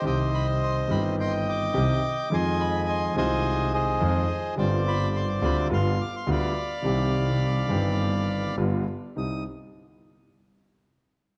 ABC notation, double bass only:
X:1
M:4/4
L:1/8
Q:1/4=106
K:Cm
V:1 name="Double bass" clef=bass
C,,3 G,,,3 C,, z | F,,3 C,,3 F,, z | G,,,3 D,, G,,, z D,, z | C,,3 G,,,3 G,,, z |
C,, z6 z |]